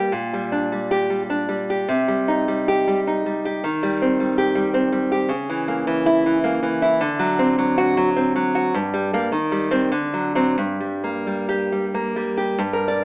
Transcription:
0.00 0.12 G3 soft
0.00 0.12 A#3 medium
0.00 0.12 G4 medium
0.12 1.85 A#2 medium
0.33 0.71 G3 soft
0.52 1.29 D4 soft
0.72 1.09 G3 soft
0.91 1.22 G4 medium
1.10 1.47 G3 soft
1.30 1.89 D4 medium
1.49 1.88 G3 soft
1.70 1.89 G4 medium
1.88 3.60 C3 medium
2.08 2.47 G3 medium
2.28 3.06 D#4 medium
2.48 2.86 G3 medium
2.68 2.99 G4 medium
2.87 3.25 G3 medium
3.07 3.64 D#4 medium
3.26 3.64 G3 soft
3.45 3.64 G4 medium
3.64 5.27 D#3 medium
3.83 4.19 G3 medium
4.02 4.73 C4 medium
4.20 4.54 G3 medium
4.38 4.67 G4 medium
4.55 4.91 G3 medium
4.74 5.30 C4 medium
4.92 5.30 G3 medium
5.12 5.31 G4 medium
5.29 6.96 C#3 medium
5.50 5.86 E3 medium
5.68 6.43 A#3 medium
5.87 6.25 E3 medium
6.06 6.37 E4 medium
6.26 6.61 E3 medium
6.44 7.00 A#3 medium
6.63 7.00 E3 medium
6.82 7.01 E4 medium
7.01 8.69 D3 medium
7.19 7.57 F#3 medium
7.39 8.15 C4 medium
7.58 7.96 F#3 medium
7.78 8.09 F#4 medium
7.97 8.34 F#3 medium
8.16 8.73 C4 medium
8.36 8.73 F#3 medium
8.55 8.74 F#4 medium
8.74 9.30 G2 medium
8.94 9.12 G3 medium
9.13 9.30 G3 medium
9.13 9.30 A#3 medium
9.32 9.90 D#3 medium
9.52 9.70 G3 medium
9.71 9.89 G3 medium
9.71 9.89 C4 medium
9.92 10.55 D3 medium
10.14 10.34 F#3 medium
10.35 10.55 F#3 medium
10.35 10.55 C4 medium
10.58 12.54 G2 medium
10.80 11.25 G3 medium
11.04 11.93 A#3 medium
11.27 11.71 G3 soft
11.49 11.85 G4 medium
11.72 12.15 G3 medium
11.94 12.58 A#3 medium
12.16 12.58 G3 medium
12.37 12.58 G4 soft
12.59 13.04 G2 medium
12.73 13.04 A#4 medium
12.88 13.04 D5 medium

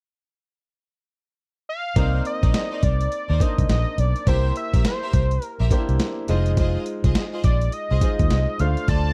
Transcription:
1.69 2.22 F5 loud
1.96 2.20 C2 loud
1.96 2.81 A#3 medium
1.96 2.81 C4 medium
1.96 2.17 D#4 medium
1.96 2.81 D#4 medium
1.96 2.17 A#4 medium
1.96 2.17 C5 medium
1.96 2.81 C5 medium
1.96 2.17 D5 medium
1.96 kick medium
1.96 closed hi-hat medium
2.25 2.86 D#5 loud
2.25 closed hi-hat medium
2.42 2.52 A#1 medium
2.42 2.58 D#4 medium
2.42 2.58 A#4 medium
2.42 2.59 C5 medium
2.42 2.59 D5 medium
2.42 kick medium
2.42 closed hi-hat soft
2.54 snare loud
2.54 closed hi-hat medium
2.71 2.87 D#4 medium
2.71 2.87 A#4 medium
2.71 2.88 C5 medium
2.71 2.88 D5 medium
2.83 3.06 C2 medium
2.83 3.43 D5 loud
2.83 kick medium
2.83 closed hi-hat medium
3.01 closed hi-hat medium
3.12 closed hi-hat medium
3.29 3.39 D#2 medium
3.29 3.45 D#4 medium
3.29 3.45 A#4 medium
3.29 3.45 C5 medium
3.29 3.45 D5 medium
3.40 4.05 A#3 medium
3.40 4.05 D4 medium
3.40 4.05 D#4 medium
3.40 4.05 C5 medium
3.40 3.70 D#5 loud
3.40 kick medium
3.40 closed hi-hat medium
3.58 3.67 C2 medium
3.58 kick medium
3.58 closed hi-hat soft
3.69 3.84 A#1 medium
3.69 4.01 D#5 loud
3.69 snare loud
3.69 closed hi-hat medium
3.98 4.13 B1 medium
3.98 4.29 D5 medium
3.98 closed hi-hat medium
4.16 closed hi-hat medium
4.27 4.50 C2 loud
4.27 5.12 A#3 medium
4.27 5.12 E4 medium
4.27 4.48 G4 medium
4.27 5.12 G4 medium
4.27 4.48 A#4 medium
4.27 4.48 C5 medium
4.27 4.56 C5 loud
4.27 5.12 C5 medium
4.27 4.48 E5 loud
4.27 kick medium
4.27 closed hi-hat medium
4.56 4.83 E5 medium
4.56 closed hi-hat medium
4.73 4.83 A#1 medium
4.73 4.89 G4 medium
4.73 4.89 A#4 medium
4.73 4.90 C5 medium
4.73 4.90 E5 medium
4.73 kick medium
4.73 closed hi-hat soft
4.85 5.45 C5 medium
4.85 snare loud
4.85 closed hi-hat medium
5.02 5.18 G4 medium
5.02 5.18 A#4 medium
5.02 5.18 C5 medium
5.02 5.19 E5 medium
5.13 5.37 C2 medium
5.13 kick medium
5.13 closed hi-hat medium
5.31 closed hi-hat medium
5.42 5.68 A#4 medium
5.42 closed hi-hat medium
5.60 5.69 A#1 medium
5.60 5.76 G4 medium
5.60 5.76 A#4 medium
5.60 5.76 C5 medium
5.60 5.76 E5 medium
5.71 6.29 A#3 medium
5.71 5.79 D4 medium
5.71 6.29 G4 medium
5.71 6.29 C5 loud
5.71 kick medium
5.71 closed hi-hat medium
5.78 6.32 E4 medium
5.89 5.98 C2 medium
5.89 closed hi-hat soft
5.99 snare medium
5.99 closed hi-hat medium
6.28 6.76 F1 loud
6.28 7.23 G#3 medium
6.28 7.23 D#4 medium
6.28 6.50 F4 medium
6.28 7.23 F4 medium
6.28 6.50 G#4 medium
6.28 6.50 C5 medium
6.28 7.23 C5 loud
6.28 6.50 D#5 medium
6.28 closed hi-hat medium
6.46 closed hi-hat medium
6.57 6.78 F4 medium
6.57 6.78 G#4 medium
6.57 6.78 C5 medium
6.57 6.79 D#5 medium
6.57 kick loud
6.57 closed hi-hat medium
6.86 closed hi-hat medium
7.04 7.13 C2 medium
7.04 7.20 F4 medium
7.04 7.20 G#4 medium
7.04 7.20 C5 medium
7.04 7.20 D#5 medium
7.04 kick medium
7.04 closed hi-hat medium
7.15 snare loud
7.15 closed hi-hat medium
7.33 7.49 F4 medium
7.33 7.49 G#4 medium
7.33 7.49 C5 medium
7.33 7.49 D#5 medium
7.44 7.68 A#1 medium
7.44 7.75 D5 medium
7.44 kick medium
7.44 closed hi-hat medium
7.61 closed hi-hat medium
7.72 8.62 D#5 loud
7.72 closed hi-hat medium
7.90 8.00 C2 medium
7.90 8.06 F4 medium
7.90 8.07 G#4 medium
7.90 8.07 C5 medium
7.90 8.07 D#5 medium
8.01 8.60 G#3 medium
8.01 8.60 D#4 medium
8.01 8.59 F4 medium
8.01 8.59 C5 medium
8.01 kick medium
8.01 closed hi-hat medium
8.19 8.29 D#2 medium
8.19 kick medium
8.19 closed hi-hat soft
8.30 8.45 C2 medium
8.30 snare loud
8.30 closed hi-hat medium
8.59 8.74 D2 medium
8.59 9.13 A3 medium
8.59 9.13 D4 medium
8.59 9.13 F4 medium
8.59 9.13 C5 medium
8.59 8.88 F5 loud
8.59 closed hi-hat medium
8.77 closed hi-hat soft
8.88 9.12 D2 loud
8.88 9.09 F4 medium
8.88 9.09 A4 medium
8.88 9.09 C5 medium
8.88 9.09 D5 medium
8.88 9.13 A5 loud
8.88 kick medium
8.88 closed hi-hat medium

